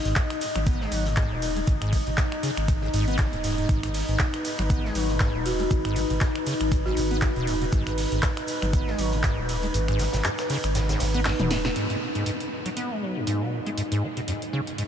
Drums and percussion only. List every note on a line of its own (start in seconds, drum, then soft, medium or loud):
0.05 closed hi-hat soft
0.16 kick loud
0.16 snare loud
0.16 clap loud
0.16 closed hi-hat medium
0.16 shaker medium
0.30 finger snap medium
0.30 closed hi-hat soft
0.41 open hi-hat loud
0.41 ride medium
0.41 shaker medium
0.56 finger snap medium
0.56 closed hi-hat medium
0.67 kick loud
0.67 closed hi-hat medium
0.67 shaker medium
0.81 snare medium
0.92 open hi-hat loud
0.92 ride medium
0.92 shaker medium
1.06 closed hi-hat soft
1.17 kick loud
1.17 snare loud
1.17 clap loud
1.17 closed hi-hat medium
1.17 shaker medium
1.42 open hi-hat loud
1.42 ride medium
1.42 shaker medium
1.56 closed hi-hat soft
1.67 kick loud
1.67 closed hi-hat medium
1.67 shaker medium
1.82 finger snap medium
1.82 closed hi-hat medium
1.93 kick medium
1.93 open hi-hat loud
1.93 ride medium
1.93 shaker medium
2.07 closed hi-hat soft
2.17 kick loud
2.17 snare loud
2.17 clap loud
2.17 closed hi-hat medium
2.17 shaker medium
2.32 finger snap medium
2.32 closed hi-hat soft
2.43 open hi-hat loud
2.43 ride medium
2.43 shaker medium
2.57 finger snap medium
2.57 closed hi-hat medium
2.68 kick loud
2.68 closed hi-hat medium
2.68 shaker medium
2.81 snare soft
2.94 open hi-hat loud
2.94 ride medium
2.94 shaker medium
3.08 closed hi-hat soft
3.18 kick loud
3.18 snare loud
3.18 clap loud
3.18 closed hi-hat medium
3.18 shaker medium
3.33 closed hi-hat soft
3.44 open hi-hat loud
3.44 ride medium
3.44 shaker medium
3.58 closed hi-hat soft
3.69 kick loud
3.69 closed hi-hat medium
3.69 shaker medium
3.83 finger snap medium
3.83 closed hi-hat medium
3.83 closed hi-hat soft
3.94 open hi-hat medium
3.94 open hi-hat loud
3.94 ride medium
4.09 closed hi-hat soft
4.19 kick loud
4.19 snare loud
4.19 clap loud
4.19 closed hi-hat medium
4.19 shaker medium
4.34 finger snap medium
4.34 closed hi-hat soft
4.45 open hi-hat medium
4.45 ride medium
4.45 shaker medium
4.59 finger snap medium
4.59 closed hi-hat medium
4.70 kick loud
4.70 closed hi-hat medium
4.70 shaker medium
4.85 snare medium
4.95 open hi-hat loud
4.95 ride medium
4.95 shaker medium
5.09 closed hi-hat soft
5.20 kick loud
5.20 snare loud
5.20 clap loud
5.20 closed hi-hat medium
5.20 shaker medium
5.46 open hi-hat medium
5.46 ride medium
5.46 shaker medium
5.60 closed hi-hat soft
5.71 kick loud
5.71 closed hi-hat medium
5.71 shaker medium
5.85 finger snap medium
5.85 closed hi-hat medium
5.96 open hi-hat loud
5.96 ride medium
5.96 shaker medium
6.10 closed hi-hat soft
6.21 kick loud
6.21 snare loud
6.21 clap loud
6.21 closed hi-hat medium
6.21 shaker medium
6.35 finger snap medium
6.35 closed hi-hat soft
6.46 open hi-hat medium
6.46 ride medium
6.46 shaker medium
6.61 finger snap medium
6.61 closed hi-hat medium
6.72 kick loud
6.72 closed hi-hat medium
6.72 shaker medium
6.86 snare soft
6.97 open hi-hat loud
6.97 ride medium
6.97 shaker medium
7.11 closed hi-hat soft
7.22 kick loud
7.22 snare loud
7.22 clap loud
7.22 closed hi-hat medium
7.22 shaker medium
7.36 closed hi-hat soft
7.47 open hi-hat medium
7.47 ride medium
7.47 shaker medium
7.62 closed hi-hat soft
7.72 kick loud
7.72 closed hi-hat medium
7.72 shaker medium
7.87 finger snap medium
7.87 closed hi-hat medium
7.87 closed hi-hat soft
7.98 open hi-hat loud
7.98 open hi-hat medium
7.98 ride medium
8.12 closed hi-hat soft
8.22 kick loud
8.22 snare loud
8.22 clap loud
8.22 closed hi-hat medium
8.22 shaker medium
8.37 finger snap medium
8.37 closed hi-hat soft
8.47 open hi-hat medium
8.47 ride medium
8.47 shaker medium
8.62 finger snap medium
8.62 closed hi-hat medium
8.73 kick loud
8.73 closed hi-hat medium
8.73 shaker medium
8.88 snare medium
8.99 open hi-hat loud
8.99 ride medium
8.99 shaker medium
9.13 closed hi-hat soft
9.23 kick loud
9.23 snare loud
9.23 clap loud
9.23 closed hi-hat medium
9.23 shaker medium
9.49 open hi-hat medium
9.49 ride medium
9.49 shaker medium
9.63 closed hi-hat soft
9.74 closed hi-hat medium
9.74 shaker medium
9.88 finger snap medium
9.88 closed hi-hat medium
9.99 snare loud
9.99 open hi-hat loud
9.99 ride medium
9.99 shaker medium
10.13 snare loud
10.13 closed hi-hat soft
10.13 shaker medium
10.24 clap loud
10.24 closed hi-hat medium
10.24 shaker medium
10.38 finger snap medium
10.38 snare loud
10.38 closed hi-hat soft
10.38 shaker medium
10.50 open hi-hat medium
10.50 ride medium
10.63 finger snap medium
10.63 closed hi-hat medium
10.63 shaker medium
10.75 snare loud
10.75 closed hi-hat medium
10.75 shaker medium
10.89 snare loud
10.89 closed hi-hat soft
10.89 shaker medium
11.00 snare loud
11.00 open hi-hat loud
11.00 ride medium
11.00 shaker medium
11.14 closed hi-hat soft
11.25 snare medium
11.25 clap loud
11.25 closed hi-hat medium
11.25 open hi-hat medium
11.39 closed hi-hat soft
11.39 high tom medium
11.51 snare medium
11.51 open hi-hat medium
11.51 ride medium
11.51 shaker medium
11.65 snare medium
11.65 closed hi-hat soft
11.76 closed hi-hat medium
11.90 closed hi-hat medium
12.15 closed hi-hat soft
12.26 closed hi-hat medium
12.40 closed hi-hat soft
12.66 closed hi-hat medium
12.77 closed hi-hat medium
13.27 closed hi-hat medium
13.67 closed hi-hat soft
13.78 closed hi-hat medium
13.92 closed hi-hat soft
14.17 closed hi-hat soft
14.28 closed hi-hat medium
14.42 closed hi-hat soft
14.67 closed hi-hat soft
14.78 closed hi-hat medium